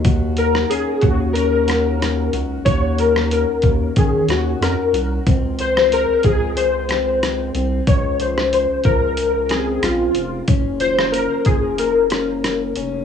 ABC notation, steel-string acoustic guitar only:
X:1
M:4/4
L:1/8
Q:"Swing 16ths" 1/4=92
K:Db
V:1 name="Steel-string acoustic guitar"
[E,G] B, D B, D G D G | [E,G] B, D B, D G D G | C F, A, F, A, C A, C | D, F, A, F, A, C A, C |
D F, B, F, B, D B, D |]